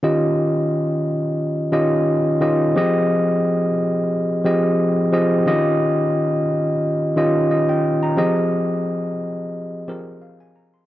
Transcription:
tine electric piano
0.03 D#3 C#4 F4 G4 D#5
1.72 D#3 C#4 F4 G4 D#5
2.40 D#3 C#4 F4 G4 D#5
2.76 F3 C4 G4 G#4 D#5
4.44 F3 C4 G4 G#4 D#5
5.12 F3 C4 G4 G#4 D#5
5.46 D#3 C#4 F4 G4 D#5
7.16 D#3 C#4 F4 G4 D#5
7.51 D#5
7.69 G5
8.03 A#5
8.17 F3 C4 G4 G#4 D#5
9.88 F3 C4 G4 G#4 A#4
10.22 F5
10.40 G#5
10.56 A#5
10.74 C6

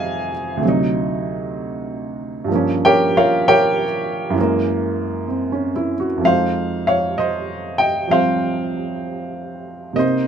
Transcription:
upright piano
Already playing: F2 C3 G#3 D#4 F4 G#4 C5 D#5 F5 G#5
0.57 D2
0.61 C3 F#3
0.68 D#4
2.44 G2 F3
2.51 A#3 C#4
2.85 G4 A#4 C#5 G5
3.17 F4 A#4 C#5 F5
3.48 G4 A#4 C#5 G5
4.30 F#2 E3
4.38 G#3 A#3
5.28 C4
5.52 C#4
5.76 E4
6.00 F#4
6.17 F2 F3
6.24 G#3 C5 F5
6.28 D#4
6.87 C#5 F5
7.18 C5 D#5
7.78 D#5 G5
8.07 F3 G3 C4 F5
8.12 C5
9.93 C3 A#3 C4 D#5
9.99 D#4 C5

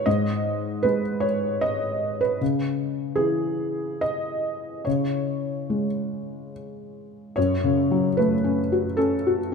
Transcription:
felt piano
Already playing: D#3
0.06 G#2 D#5
0.83 G#3 B4
1.20 C#5
1.61 D#5
2.21 B4
2.41 C#3
3.16 E3 G#4
4.01 D#5
4.85 C#3 C#5
5.70 G#3
7.36 F#2 C#5
7.64 C#3
7.91 F#3
8.17 A3 B4
8.44 C#4
8.72 F#4
8.97 C#4 A4
9.27 F#4

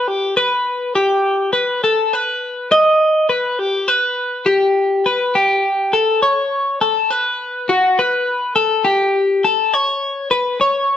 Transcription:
clean electric guitar
0.08 G4
0.37 B4
0.96 G4
1.53 B4
1.84 A4
2.13 B4
2.72 D#5
3.29 B4
3.59 G4
3.88 B4
4.46 G4
5.06 B4
5.35 G4
5.93 A4
6.23 C#5
6.81 A4
7.11 B4
7.69 F#4
7.99 B4
8.56 A4
8.85 G4
9.44 A4
9.74 C#5
10.31 B4
10.61 C#5

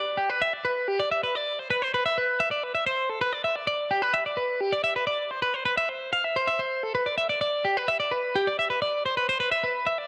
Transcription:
clean electric guitar
Already playing: D5
0.17 G4
0.30 B4
0.42 E5
0.53 D5
0.65 B4
0.88 G4
1.00 D5
1.11 E5
1.23 B4
1.35 D5
1.59 C5
1.71 B4
1.82 C5
1.94 B4
2.06 E5
2.18 B4
2.40 E5
2.51 D5
2.64 B4
2.75 E5
2.87 C5
3.10 A4
3.21 B4
3.33 D5
3.44 E5
3.56 D5
3.67 D5
3.91 G4
4.02 B4
4.14 E5
4.26 D5
4.37 B4
4.61 G4
4.72 D5
4.84 E5
4.96 B4
5.07 D5
5.31 C5
5.42 B4
5.54 C5
5.65 B4
5.77 E5
5.89 C5
6.13 F5
6.24 E5
6.36 C5
6.47 E5
6.59 C5
6.83 A4
6.95 B4
7.06 D5
7.18 E5
7.29 D5
7.41 D5
7.65 G4
7.77 B4
7.88 E5
8.00 D5
8.11 B4
8.36 G4
8.47 D5
8.59 E5
8.70 B4
8.82 D5
9.06 C5
9.17 B4
9.29 C5
9.40 B4
9.52 E5
9.64 B4
9.87 E5
9.98 D5

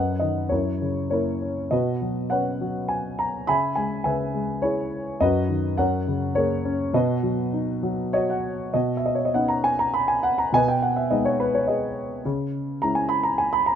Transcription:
grand piano
Already playing: F#2 B4 D#5 F#5
0.19 D#3 D#5
0.49 F#2 E4 A#4 C#5
0.81 C#3
1.10 A#3 E4 A#4 C#5
1.42 C#4
1.71 B2 F#4 B4 D#5
2.02 F#3
2.30 C#4 B4 C#5 F#5
2.61 F#3
2.88 G#5
3.19 A#5
3.47 C#3 E5 G#5 B5
3.76 G#3 G#5
4.04 C#3 B4 E5 G#5
4.34 G#3
4.62 E4 G#4 C#5
5.20 F#2 F#4 B4 D#5
5.49 D#3
5.77 F#2 A#4 C#5 F#5
6.07 C#3
6.35 A#3 G#4 A#4 C#5
6.65 C#4
6.94 B2 F#4 B4 D#5
7.23 F#3
7.53 D#4
7.83 F#3
8.13 F#4 C#5 D#5
8.30 F#5
8.74 B2 F#4 D#5
8.97 E5
9.06 D#5
9.15 C#5
9.25 D#5
9.34 B3 C#4 D#4 F#5
9.48 A#5
9.64 G#5
9.79 A#5
9.94 B5
10.08 G#5
10.23 F#5
10.38 A#5
10.52 B2 B4 D#5 G#5
10.68 G5
10.82 F#5
10.96 E5
11.11 G#3 B3 D#4 D#5
11.25 C#5
11.40 B4
11.54 C#5
11.68 G#4 B4 D#5
12.25 C#3
12.82 G#3 C#4 E4 A#5
12.95 G#5
13.09 B5
13.23 A#5
13.38 G#5
13.53 B5
13.66 A#5

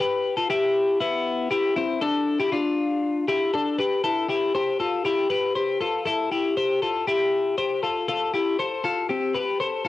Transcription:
clean electric guitar
0.00 G4 B4
0.37 F4 A4
0.50 E4 G4
1.00 B3 E4
1.51 E4 G4
1.76 C4 E4
2.01 D4 A4
2.40 E4 G4
2.52 D4 F4
3.28 E4 G4
3.54 D4 A4
3.79 G4 B4
4.04 E4 A4
4.29 E4 G4
4.55 G4 C5
4.80 F4 A4
5.05 E4 G4
5.30 G4 B4
5.55 G4 C5
5.81 F4 A4
6.06 E4 A4
6.32 E4 G4
6.57 G4 C5
6.82 F4 A4
7.08 E4 G4
7.58 G4 C5
7.83 F4 A4
8.08 F4 A4
8.34 E4 G4
8.59 A4 C5
8.84 F4 A4
9.09 C4 G4
9.34 G4 B4
9.60 A4 C5
9.85 A4

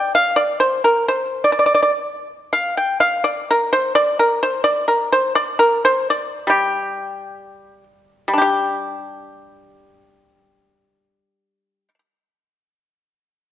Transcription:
pipa
Already playing: G5
0.15 F5
0.36 D5
0.60 C5
0.84 A#4
1.08 C5
1.44 D5
1.52 D5
1.59 D5
1.66 D5
1.75 D5
1.83 D5
2.53 F5
2.77 G5
3.00 F5
3.24 D5
3.51 A#4
3.73 C5
3.95 D5
4.19 A#4
4.43 C5
4.64 D5
4.88 A#4
5.12 C5
5.35 D5
5.59 A#4
5.85 C5
6.10 D5
6.47 G3 G4
8.28 G3
8.33 D4
8.38 G4

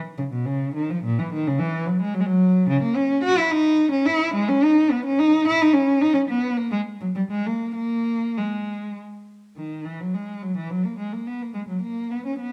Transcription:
cello
0.18 C#3
0.32 B2
0.46 C#3
0.74 D#3
0.90 F3
1.04 A#2
1.18 E3
1.33 D#3
1.47 C#3
1.59 E3
1.87 F#3
2.01 G#3
2.14 F#3
2.20 G#3
2.26 F#3
2.69 C#3
2.83 A#3
2.96 C#4
3.23 F#4
3.38 E4
3.51 D#4
3.92 C#4
4.06 E4
4.34 G#3
4.49 C#4
4.64 D#4
4.91 B3
5.05 C#4
5.19 D#4
5.47 E4
5.62 D#4
5.73 C#4
6.01 D#4
6.14 C#4
6.29 B3
6.57 A#3
6.72 G#3
7.01 F#3
7.15 G3
7.31 G#3
7.46 A#3
7.76 A#3
8.37 G#3
9.56 D#3
9.85 E3
10.00 F#3
10.14 G#3
10.43 F#3
10.57 E3
10.70 F#3
10.85 A#3
10.99 G#3
11.13 A#3
11.27 B3
11.42 A#3
11.54 G#3
11.69 F#3
11.82 A#3
12.11 B3
12.26 C#4
12.39 B3

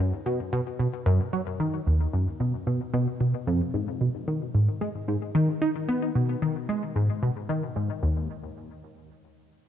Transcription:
synth arpeggio sound
0.00 F#2
0.26 B2
0.53 B2
0.79 B2
1.06 F#2
1.33 F#3
1.60 D#3
1.87 D#2
2.13 F#2
2.40 B2
2.67 B2
2.94 B2
3.21 B2
3.47 F2
3.74 G#2
4.01 B2
4.28 D#3
4.54 G#2
4.81 G#3
5.08 G#2
5.35 D#3
5.62 D#4
5.88 B3
6.15 B2
6.42 D#3
6.69 G#3
6.96 G#2
7.22 B2
7.49 D#3
7.76 G#2
8.03 D#2

